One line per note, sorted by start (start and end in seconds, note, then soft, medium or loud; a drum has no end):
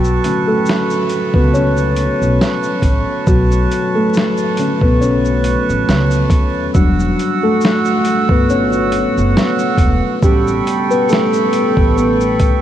0.00 0.16 B1 medium
0.00 0.44 F#3 medium
0.00 0.49 F#4 medium
0.00 6.71 B4 medium
0.00 6.71 A5 medium
0.00 6.71 C#6 medium
0.04 shaker soft
0.24 1.50 D3 medium
0.24 0.48 A3 soft
0.24 1.50 C#4 medium
0.24 closed hi-hat medium
0.24 shaker soft
0.47 1.31 A3 medium
0.47 1.37 A4 medium
0.66 snare loud
0.66 shaker medium
0.90 shaker medium
1.09 closed hi-hat medium
1.09 shaker soft
1.34 2.07 C#2 medium
1.34 1.53 B3 medium
1.34 1.54 B4 medium
1.34 kick medium
1.53 2.81 C#4 medium
1.53 2.80 C#5 loud
1.53 shaker medium
1.77 shaker soft
1.96 closed hi-hat medium
1.96 shaker soft
2.22 2.37 B1 medium
2.22 shaker soft
2.41 snare loud
2.41 shaker medium
2.63 shaker soft
2.82 3.03 A1 medium
2.82 kick medium
2.82 closed hi-hat medium
2.82 shaker soft
3.27 3.64 B1 medium
3.27 3.92 F#3 medium
3.27 3.91 F#4 medium
3.27 kick loud
3.27 shaker medium
3.52 shaker soft
3.72 closed hi-hat medium
3.72 shaker soft
3.95 4.58 A3 medium
3.95 4.84 A4 medium
4.14 snare loud
4.14 shaker medium
4.37 shaker medium
4.57 5.84 D3 soft
4.57 5.85 A3 soft
4.57 5.01 C#4 medium
4.57 closed hi-hat medium
4.57 shaker medium
4.81 5.54 B1 medium
4.81 5.01 B3 medium
4.81 5.00 B4 loud
4.81 kick medium
5.01 6.28 C#4 medium
5.01 6.27 C#5 medium
5.01 shaker medium
5.25 shaker soft
5.44 closed hi-hat medium
5.44 shaker soft
5.69 5.85 A1 medium
5.69 shaker soft
5.89 6.25 C#2 loud
5.89 snare loud
5.89 shaker medium
6.11 shaker soft
6.30 6.67 D#2 medium
6.30 kick medium
6.30 closed hi-hat medium
6.30 shaker soft
6.74 7.11 E1 medium
6.74 7.40 F#3 medium
6.74 8.02 G3 medium
6.74 8.02 D4 medium
6.74 10.19 F#4 medium
6.74 7.45 F#4 medium
6.74 10.19 F#5 medium
6.74 10.19 E6 medium
6.74 kick loud
6.74 shaker medium
7.00 shaker soft
7.19 closed hi-hat medium
7.19 shaker soft
7.43 8.26 A3 medium
7.43 8.32 A4 medium
7.61 snare loud
7.61 shaker medium
7.85 shaker medium
8.05 closed hi-hat medium
8.05 shaker medium
8.29 9.02 G1 medium
8.29 8.49 B3 medium
8.29 8.50 B4 medium
8.29 kick medium
8.50 9.76 C#4 medium
8.50 9.76 C#5 medium
8.50 shaker medium
8.72 shaker soft
8.92 closed hi-hat medium
8.92 shaker soft
9.17 9.33 F#1 medium
9.17 shaker soft
9.37 snare loud
9.37 shaker medium
9.59 shaker soft
9.78 9.99 E1 medium
9.78 kick medium
9.78 closed hi-hat medium
9.78 shaker soft
10.23 10.59 A1 medium
10.23 10.87 G3 medium
10.23 10.91 B3 medium
10.23 12.62 C#4 medium
10.23 10.93 G4 medium
10.23 12.62 A4 medium
10.23 12.62 G5 medium
10.23 12.62 B5 medium
10.23 12.62 C#6 medium
10.23 kick loud
10.23 shaker medium
10.47 shaker soft
10.67 closed hi-hat medium
10.67 shaker soft
10.90 11.09 B3 medium
10.90 11.10 B4 loud
10.90 shaker medium
11.09 11.93 A3 medium
11.09 11.99 A4 loud
11.09 snare medium
11.09 shaker medium
11.33 shaker medium
11.53 closed hi-hat medium
11.53 shaker soft
11.77 12.50 A1 medium
11.77 kick medium
11.96 12.62 B3 medium
11.96 12.62 B4 medium
11.96 shaker medium
12.21 shaker soft
12.40 kick medium
12.40 closed hi-hat medium
12.40 shaker soft